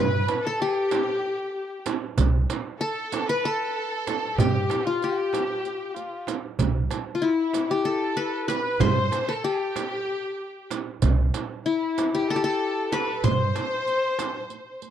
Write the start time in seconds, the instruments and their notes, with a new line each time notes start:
Already playing: upright bass G2, qanun G4 A4, violin section B4
0.00 kamancheh B4, qanun B4
0.28 riq, darbuka tek, frame drum
0.45 violin section A4, kamancheh A4, qanun A4
0.60 kamancheh G4, violin section G4, qanun G4, darbuka ka
0.91 riq, darbuka tek, frame drum
1.23 darbuka ka
1.54 kamancheh G4
1.86 riq, darbuka tek, frame drum
2.18 upright bass C2, riq, darbuka dum, frame drum
2.50 riq, darbuka tek, frame drum
2.79 kamancheh A4, violin section A4, qanun A4, darbuka ka
3.12 riq, darbuka tek, frame drum
3.28 violin section B4, kamancheh B4, qanun B4
3.43 violin section A4, kamancheh A4, qanun A4, darbuka ka
4.07 kamancheh A4, riq, darbuka tek, frame drum
4.38 upright bass G2, violin section G4, kamancheh G4, qanun G4, riq, darbuka dum, frame drum
4.70 riq, darbuka tek, frame drum
4.85 violin section F4, kamancheh F4, qanun F4
5.02 violin section G4, qanun G4, kamancheh G4, riq, darbuka ka
5.33 riq, darbuka tek, frame drum
5.65 riq, darbuka ka
5.90 kamancheh F4 G4
5.96 riq, darbuka ka
6.27 riq, darbuka tek, frame drum
6.59 upright bass C2, riq, darbuka dum, frame drum
6.91 riq, darbuka tek, frame drum
7.15 qanun F4
7.22 qanun E4, kamancheh E4, violin section E4, darbuka ka
7.53 riq, darbuka tek, frame drum
7.70 violin section G4, kamancheh G4, qanun G4
7.84 violin section A4, qanun A4, kamancheh A4, darbuka ka
8.17 qanun B4
8.48 qanun B4, violin section B4, kamancheh B4, riq, darbuka tek, frame drum
8.80 upright bass G2, violin section B4, kamancheh C5, qanun C5, riq, darbuka dum, frame drum
8.92 violin section C5
9.12 riq, darbuka tek, frame drum
9.27 violin section A4, qanun A4, kamancheh A4
9.44 qanun G4, violin section G4, kamancheh G4, darbuka ka
9.76 riq, darbuka tek, frame drum
10.08 darbuka ka
10.71 riq, darbuka tek, frame drum
11.02 upright bass C2, riq, darbuka dum, frame drum
11.34 riq, darbuka tek, frame drum
11.66 qanun E4, kamancheh E4, violin section E4, darbuka ka
11.98 riq, darbuka tek, frame drum
12.14 violin section G4, qanun G4
12.28 kamancheh A4, qanun A4, violin section A4, darbuka ka
12.36 qanun G4
12.43 kamancheh A4, qanun A4, violin section A4
12.92 qanun B4, violin section B4, riq, darbuka tek, frame drum
13.24 upright bass G2, qanun C5, kamancheh C5, violin section C5, riq, darbuka dum, frame drum
13.56 riq, darbuka tek, frame drum
13.87 riq, darbuka ka
14.19 riq, darbuka tek, frame drum
14.50 riq, darbuka ka
14.82 riq, darbuka ka